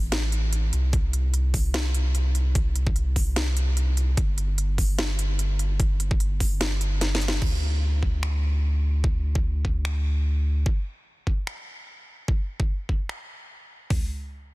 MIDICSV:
0, 0, Header, 1, 3, 480
1, 0, Start_track
1, 0, Tempo, 405405
1, 1102, Time_signature, 4, 2, 24, 8
1, 17215, End_track
2, 0, Start_track
2, 0, Title_t, "Sub bass"
2, 0, Program_c, 0, 38
2, 0, Note_on_c, 0, 33, 90
2, 841, Note_off_c, 0, 33, 0
2, 862, Note_on_c, 0, 36, 92
2, 4920, Note_off_c, 0, 36, 0
2, 4942, Note_on_c, 0, 31, 91
2, 8761, Note_off_c, 0, 31, 0
2, 8783, Note_on_c, 0, 38, 85
2, 12601, Note_off_c, 0, 38, 0
2, 17215, End_track
3, 0, Start_track
3, 0, Title_t, "Drums"
3, 142, Note_on_c, 9, 38, 121
3, 142, Note_on_c, 9, 42, 76
3, 261, Note_off_c, 9, 38, 0
3, 261, Note_off_c, 9, 42, 0
3, 382, Note_on_c, 9, 42, 63
3, 501, Note_off_c, 9, 42, 0
3, 622, Note_on_c, 9, 42, 78
3, 741, Note_off_c, 9, 42, 0
3, 862, Note_on_c, 9, 42, 65
3, 981, Note_off_c, 9, 42, 0
3, 1102, Note_on_c, 9, 36, 123
3, 1102, Note_on_c, 9, 42, 77
3, 1220, Note_off_c, 9, 36, 0
3, 1220, Note_off_c, 9, 42, 0
3, 1342, Note_on_c, 9, 42, 64
3, 1461, Note_off_c, 9, 42, 0
3, 1582, Note_on_c, 9, 42, 77
3, 1700, Note_off_c, 9, 42, 0
3, 1822, Note_on_c, 9, 36, 65
3, 1822, Note_on_c, 9, 46, 94
3, 1940, Note_off_c, 9, 36, 0
3, 1940, Note_off_c, 9, 46, 0
3, 2062, Note_on_c, 9, 38, 122
3, 2062, Note_on_c, 9, 42, 76
3, 2180, Note_off_c, 9, 38, 0
3, 2180, Note_off_c, 9, 42, 0
3, 2303, Note_on_c, 9, 42, 64
3, 2421, Note_off_c, 9, 42, 0
3, 2542, Note_on_c, 9, 42, 80
3, 2661, Note_off_c, 9, 42, 0
3, 2782, Note_on_c, 9, 42, 65
3, 2900, Note_off_c, 9, 42, 0
3, 3022, Note_on_c, 9, 36, 118
3, 3022, Note_on_c, 9, 42, 81
3, 3140, Note_off_c, 9, 36, 0
3, 3140, Note_off_c, 9, 42, 0
3, 3262, Note_on_c, 9, 42, 64
3, 3381, Note_off_c, 9, 42, 0
3, 3394, Note_on_c, 9, 36, 106
3, 3502, Note_on_c, 9, 42, 78
3, 3512, Note_off_c, 9, 36, 0
3, 3620, Note_off_c, 9, 42, 0
3, 3742, Note_on_c, 9, 36, 62
3, 3742, Note_on_c, 9, 46, 100
3, 3861, Note_off_c, 9, 36, 0
3, 3861, Note_off_c, 9, 46, 0
3, 3982, Note_on_c, 9, 38, 112
3, 3982, Note_on_c, 9, 42, 77
3, 4101, Note_off_c, 9, 38, 0
3, 4101, Note_off_c, 9, 42, 0
3, 4222, Note_on_c, 9, 42, 68
3, 4341, Note_off_c, 9, 42, 0
3, 4462, Note_on_c, 9, 42, 81
3, 4581, Note_off_c, 9, 42, 0
3, 4702, Note_on_c, 9, 42, 69
3, 4821, Note_off_c, 9, 42, 0
3, 4942, Note_on_c, 9, 36, 119
3, 4943, Note_on_c, 9, 42, 84
3, 5060, Note_off_c, 9, 36, 0
3, 5061, Note_off_c, 9, 42, 0
3, 5183, Note_on_c, 9, 42, 69
3, 5301, Note_off_c, 9, 42, 0
3, 5423, Note_on_c, 9, 42, 82
3, 5541, Note_off_c, 9, 42, 0
3, 5662, Note_on_c, 9, 36, 62
3, 5662, Note_on_c, 9, 46, 97
3, 5781, Note_off_c, 9, 36, 0
3, 5781, Note_off_c, 9, 46, 0
3, 5902, Note_on_c, 9, 38, 111
3, 5902, Note_on_c, 9, 42, 81
3, 6021, Note_off_c, 9, 38, 0
3, 6021, Note_off_c, 9, 42, 0
3, 6142, Note_on_c, 9, 42, 71
3, 6261, Note_off_c, 9, 42, 0
3, 6383, Note_on_c, 9, 42, 83
3, 6501, Note_off_c, 9, 42, 0
3, 6623, Note_on_c, 9, 42, 72
3, 6741, Note_off_c, 9, 42, 0
3, 6863, Note_on_c, 9, 36, 122
3, 6863, Note_on_c, 9, 42, 89
3, 6981, Note_off_c, 9, 36, 0
3, 6981, Note_off_c, 9, 42, 0
3, 7103, Note_on_c, 9, 42, 70
3, 7222, Note_off_c, 9, 42, 0
3, 7234, Note_on_c, 9, 36, 106
3, 7343, Note_on_c, 9, 42, 87
3, 7353, Note_off_c, 9, 36, 0
3, 7461, Note_off_c, 9, 42, 0
3, 7583, Note_on_c, 9, 36, 63
3, 7583, Note_on_c, 9, 46, 97
3, 7701, Note_off_c, 9, 36, 0
3, 7701, Note_off_c, 9, 46, 0
3, 7823, Note_on_c, 9, 38, 114
3, 7823, Note_on_c, 9, 42, 86
3, 7941, Note_off_c, 9, 38, 0
3, 7941, Note_off_c, 9, 42, 0
3, 8063, Note_on_c, 9, 42, 72
3, 8181, Note_off_c, 9, 42, 0
3, 8303, Note_on_c, 9, 38, 71
3, 8303, Note_on_c, 9, 42, 87
3, 8421, Note_off_c, 9, 38, 0
3, 8421, Note_off_c, 9, 42, 0
3, 8463, Note_on_c, 9, 38, 83
3, 8543, Note_on_c, 9, 42, 71
3, 8582, Note_off_c, 9, 38, 0
3, 8623, Note_on_c, 9, 38, 100
3, 8661, Note_off_c, 9, 42, 0
3, 8741, Note_off_c, 9, 38, 0
3, 8783, Note_on_c, 9, 36, 112
3, 8783, Note_on_c, 9, 49, 81
3, 8901, Note_off_c, 9, 49, 0
3, 8902, Note_off_c, 9, 36, 0
3, 9503, Note_on_c, 9, 36, 60
3, 9621, Note_off_c, 9, 36, 0
3, 9743, Note_on_c, 9, 26, 91
3, 9862, Note_off_c, 9, 26, 0
3, 10703, Note_on_c, 9, 36, 114
3, 10821, Note_off_c, 9, 36, 0
3, 11075, Note_on_c, 9, 36, 105
3, 11193, Note_off_c, 9, 36, 0
3, 11423, Note_on_c, 9, 36, 61
3, 11541, Note_off_c, 9, 36, 0
3, 11663, Note_on_c, 9, 26, 89
3, 11781, Note_off_c, 9, 26, 0
3, 12622, Note_on_c, 9, 36, 114
3, 12741, Note_off_c, 9, 36, 0
3, 13342, Note_on_c, 9, 36, 61
3, 13461, Note_off_c, 9, 36, 0
3, 13583, Note_on_c, 9, 26, 88
3, 13701, Note_off_c, 9, 26, 0
3, 14543, Note_on_c, 9, 36, 108
3, 14661, Note_off_c, 9, 36, 0
3, 14915, Note_on_c, 9, 36, 98
3, 15033, Note_off_c, 9, 36, 0
3, 15263, Note_on_c, 9, 36, 58
3, 15381, Note_off_c, 9, 36, 0
3, 15503, Note_on_c, 9, 26, 80
3, 15621, Note_off_c, 9, 26, 0
3, 16462, Note_on_c, 9, 43, 90
3, 16462, Note_on_c, 9, 46, 78
3, 16463, Note_on_c, 9, 36, 94
3, 16581, Note_off_c, 9, 36, 0
3, 16581, Note_off_c, 9, 43, 0
3, 16581, Note_off_c, 9, 46, 0
3, 17215, End_track
0, 0, End_of_file